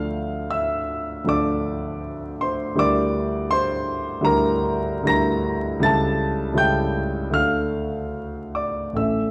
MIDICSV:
0, 0, Header, 1, 2, 480
1, 0, Start_track
1, 0, Key_signature, -1, "minor"
1, 0, Tempo, 791557
1, 780, Tempo, 742574
1, 1755, Time_signature, 4, 2, 24, 8
1, 2700, Tempo, 823045
1, 3180, Tempo, 750939
1, 4620, Tempo, 800000
1, 5100, Tempo, 849858
1, 5765, End_track
2, 0, Start_track
2, 0, Title_t, "Grand piano"
2, 0, Program_c, 0, 0
2, 0, Control_c, 0, 64, 127
2, 0, Note_on_c, 0, 38, 55
2, 0, Note_on_c, 0, 53, 50
2, 0, Note_on_c, 0, 62, 45
2, 0, Note_on_c, 0, 69, 48
2, 0, Note_on_c, 0, 77, 72
2, 0, Note_on_c, 0, 89, 93
2, 283, Note_off_c, 0, 77, 0
2, 305, Note_off_c, 0, 89, 0
2, 306, Note_on_c, 0, 88, 97
2, 312, Note_on_c, 0, 76, 72
2, 742, Note_off_c, 0, 38, 0
2, 746, Note_off_c, 0, 53, 0
2, 748, Note_off_c, 0, 62, 0
2, 752, Note_on_c, 0, 38, 56
2, 753, Note_off_c, 0, 69, 0
2, 757, Note_off_c, 0, 76, 0
2, 762, Note_on_c, 0, 53, 43
2, 768, Note_on_c, 0, 62, 46
2, 772, Note_on_c, 0, 69, 50
2, 779, Note_off_c, 0, 88, 0
2, 780, Note_on_c, 0, 86, 97
2, 783, Note_on_c, 0, 74, 68
2, 1489, Note_off_c, 0, 74, 0
2, 1507, Note_on_c, 0, 84, 84
2, 1513, Note_off_c, 0, 86, 0
2, 1515, Note_on_c, 0, 72, 64
2, 1714, Note_off_c, 0, 38, 0
2, 1719, Note_off_c, 0, 53, 0
2, 1722, Note_off_c, 0, 62, 0
2, 1725, Note_off_c, 0, 69, 0
2, 1727, Note_on_c, 0, 38, 61
2, 1734, Note_on_c, 0, 55, 55
2, 1739, Note_off_c, 0, 72, 0
2, 1739, Note_on_c, 0, 64, 50
2, 1748, Note_on_c, 0, 70, 49
2, 1751, Note_off_c, 0, 84, 0
2, 1752, Note_on_c, 0, 86, 107
2, 1756, Note_on_c, 0, 74, 76
2, 1766, Control_c, 0, 64, 0
2, 1876, Control_c, 0, 64, 127
2, 2200, Note_off_c, 0, 74, 0
2, 2215, Note_on_c, 0, 84, 107
2, 2224, Note_off_c, 0, 86, 0
2, 2226, Note_on_c, 0, 72, 77
2, 2657, Note_off_c, 0, 38, 0
2, 2664, Note_off_c, 0, 55, 0
2, 2667, Note_off_c, 0, 64, 0
2, 2667, Note_on_c, 0, 38, 65
2, 2671, Note_off_c, 0, 70, 0
2, 2675, Note_off_c, 0, 72, 0
2, 2680, Note_on_c, 0, 55, 51
2, 2685, Note_on_c, 0, 64, 49
2, 2693, Note_on_c, 0, 82, 101
2, 2695, Note_off_c, 0, 84, 0
2, 2703, Note_on_c, 0, 70, 72
2, 3142, Note_off_c, 0, 38, 0
2, 3151, Note_on_c, 0, 38, 63
2, 3156, Note_off_c, 0, 64, 0
2, 3157, Note_off_c, 0, 55, 0
2, 3158, Note_off_c, 0, 70, 0
2, 3165, Note_on_c, 0, 55, 53
2, 3165, Note_on_c, 0, 64, 59
2, 3175, Note_on_c, 0, 94, 107
2, 3177, Note_off_c, 0, 82, 0
2, 3177, Note_on_c, 0, 70, 56
2, 3187, Note_on_c, 0, 82, 89
2, 3632, Note_off_c, 0, 55, 0
2, 3638, Note_off_c, 0, 38, 0
2, 3638, Note_on_c, 0, 37, 70
2, 3641, Note_on_c, 0, 55, 55
2, 3642, Note_off_c, 0, 64, 0
2, 3647, Note_off_c, 0, 82, 0
2, 3652, Note_on_c, 0, 64, 54
2, 3653, Note_off_c, 0, 70, 0
2, 3659, Note_on_c, 0, 69, 56
2, 3659, Note_on_c, 0, 93, 110
2, 3666, Note_off_c, 0, 94, 0
2, 3670, Note_on_c, 0, 81, 89
2, 3679, Control_c, 0, 64, 0
2, 3766, Control_c, 0, 64, 127
2, 4100, Note_off_c, 0, 37, 0
2, 4105, Note_off_c, 0, 55, 0
2, 4109, Note_on_c, 0, 37, 64
2, 4112, Note_off_c, 0, 64, 0
2, 4112, Note_off_c, 0, 81, 0
2, 4114, Note_on_c, 0, 55, 51
2, 4118, Note_off_c, 0, 69, 0
2, 4122, Note_on_c, 0, 64, 55
2, 4130, Note_on_c, 0, 69, 54
2, 4132, Note_off_c, 0, 93, 0
2, 4137, Note_on_c, 0, 91, 100
2, 4142, Note_on_c, 0, 79, 83
2, 4592, Note_off_c, 0, 37, 0
2, 4595, Note_off_c, 0, 55, 0
2, 4598, Note_off_c, 0, 64, 0
2, 4598, Note_off_c, 0, 79, 0
2, 4599, Note_on_c, 0, 38, 55
2, 4603, Note_off_c, 0, 69, 0
2, 4610, Note_on_c, 0, 57, 45
2, 4615, Note_on_c, 0, 62, 43
2, 4621, Note_off_c, 0, 91, 0
2, 4622, Note_on_c, 0, 69, 48
2, 4622, Note_on_c, 0, 89, 97
2, 4630, Note_on_c, 0, 77, 70
2, 4631, Control_c, 0, 64, 0
2, 4745, Control_c, 0, 64, 127
2, 5318, Note_off_c, 0, 77, 0
2, 5335, Note_on_c, 0, 86, 74
2, 5337, Note_off_c, 0, 89, 0
2, 5340, Note_on_c, 0, 74, 59
2, 5545, Note_off_c, 0, 38, 0
2, 5549, Note_off_c, 0, 57, 0
2, 5549, Note_on_c, 0, 33, 45
2, 5552, Note_off_c, 0, 62, 0
2, 5556, Note_off_c, 0, 69, 0
2, 5557, Note_on_c, 0, 57, 37
2, 5562, Note_on_c, 0, 61, 38
2, 5563, Note_off_c, 0, 74, 0
2, 5569, Note_on_c, 0, 69, 37
2, 5570, Note_on_c, 0, 88, 77
2, 5577, Note_off_c, 0, 86, 0
2, 5578, Note_on_c, 0, 76, 57
2, 5588, Control_c, 0, 64, 0
2, 5683, Control_c, 0, 64, 127
2, 5765, Note_off_c, 0, 33, 0
2, 5765, Note_off_c, 0, 57, 0
2, 5765, Note_off_c, 0, 61, 0
2, 5765, Note_off_c, 0, 69, 0
2, 5765, Note_off_c, 0, 76, 0
2, 5765, Note_off_c, 0, 88, 0
2, 5765, End_track
0, 0, End_of_file